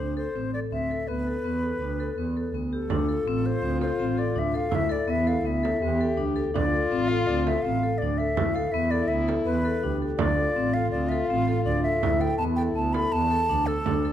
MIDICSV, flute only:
0, 0, Header, 1, 2, 480
1, 0, Start_track
1, 0, Tempo, 364964
1, 1430, Time_signature, 5, 2, 24, 8
1, 18580, End_track
2, 0, Start_track
2, 0, Title_t, "Flute"
2, 0, Program_c, 0, 73
2, 0, Note_on_c, 0, 72, 64
2, 193, Note_off_c, 0, 72, 0
2, 226, Note_on_c, 0, 72, 64
2, 674, Note_off_c, 0, 72, 0
2, 705, Note_on_c, 0, 74, 73
2, 784, Note_off_c, 0, 74, 0
2, 951, Note_on_c, 0, 76, 67
2, 1417, Note_on_c, 0, 71, 76
2, 1436, Note_off_c, 0, 76, 0
2, 3342, Note_off_c, 0, 71, 0
2, 3568, Note_on_c, 0, 69, 68
2, 4549, Note_on_c, 0, 72, 83
2, 4569, Note_off_c, 0, 69, 0
2, 5009, Note_off_c, 0, 72, 0
2, 5017, Note_on_c, 0, 72, 68
2, 5508, Note_on_c, 0, 74, 70
2, 5527, Note_off_c, 0, 72, 0
2, 5767, Note_on_c, 0, 76, 78
2, 5786, Note_off_c, 0, 74, 0
2, 5990, Note_on_c, 0, 77, 79
2, 6010, Note_off_c, 0, 76, 0
2, 6245, Note_on_c, 0, 76, 94
2, 6265, Note_off_c, 0, 77, 0
2, 6465, Note_on_c, 0, 74, 74
2, 6485, Note_off_c, 0, 76, 0
2, 6709, Note_on_c, 0, 76, 86
2, 6728, Note_off_c, 0, 74, 0
2, 6939, Note_on_c, 0, 77, 75
2, 6959, Note_off_c, 0, 76, 0
2, 7115, Note_off_c, 0, 77, 0
2, 7115, Note_on_c, 0, 77, 59
2, 7188, Note_on_c, 0, 76, 70
2, 7207, Note_off_c, 0, 77, 0
2, 8203, Note_off_c, 0, 76, 0
2, 8610, Note_on_c, 0, 74, 86
2, 9315, Note_on_c, 0, 77, 78
2, 9335, Note_off_c, 0, 74, 0
2, 9561, Note_on_c, 0, 74, 72
2, 9580, Note_off_c, 0, 77, 0
2, 9801, Note_off_c, 0, 74, 0
2, 9809, Note_on_c, 0, 76, 78
2, 10026, Note_on_c, 0, 77, 85
2, 10046, Note_off_c, 0, 76, 0
2, 10496, Note_on_c, 0, 74, 74
2, 10516, Note_off_c, 0, 77, 0
2, 10757, Note_on_c, 0, 76, 79
2, 10777, Note_off_c, 0, 74, 0
2, 11238, Note_on_c, 0, 77, 78
2, 11258, Note_off_c, 0, 76, 0
2, 11464, Note_on_c, 0, 76, 89
2, 11484, Note_off_c, 0, 77, 0
2, 11715, Note_on_c, 0, 74, 83
2, 11735, Note_off_c, 0, 76, 0
2, 11941, Note_on_c, 0, 76, 73
2, 11961, Note_off_c, 0, 74, 0
2, 12200, Note_off_c, 0, 76, 0
2, 12426, Note_on_c, 0, 71, 90
2, 13112, Note_off_c, 0, 71, 0
2, 13388, Note_on_c, 0, 74, 94
2, 14121, Note_on_c, 0, 77, 88
2, 14141, Note_off_c, 0, 74, 0
2, 14340, Note_off_c, 0, 77, 0
2, 14348, Note_on_c, 0, 74, 77
2, 14584, Note_on_c, 0, 76, 76
2, 14604, Note_off_c, 0, 74, 0
2, 14813, Note_on_c, 0, 77, 90
2, 14833, Note_off_c, 0, 76, 0
2, 15311, Note_off_c, 0, 77, 0
2, 15319, Note_on_c, 0, 74, 81
2, 15555, Note_off_c, 0, 74, 0
2, 15561, Note_on_c, 0, 76, 77
2, 16057, Note_on_c, 0, 79, 81
2, 16077, Note_off_c, 0, 76, 0
2, 16270, Note_off_c, 0, 79, 0
2, 16278, Note_on_c, 0, 81, 97
2, 16357, Note_off_c, 0, 81, 0
2, 16519, Note_on_c, 0, 79, 87
2, 16598, Note_off_c, 0, 79, 0
2, 16772, Note_on_c, 0, 81, 78
2, 17008, Note_on_c, 0, 83, 89
2, 17027, Note_off_c, 0, 81, 0
2, 17259, Note_on_c, 0, 81, 97
2, 17278, Note_off_c, 0, 83, 0
2, 17974, Note_on_c, 0, 69, 92
2, 17993, Note_off_c, 0, 81, 0
2, 18580, Note_off_c, 0, 69, 0
2, 18580, End_track
0, 0, End_of_file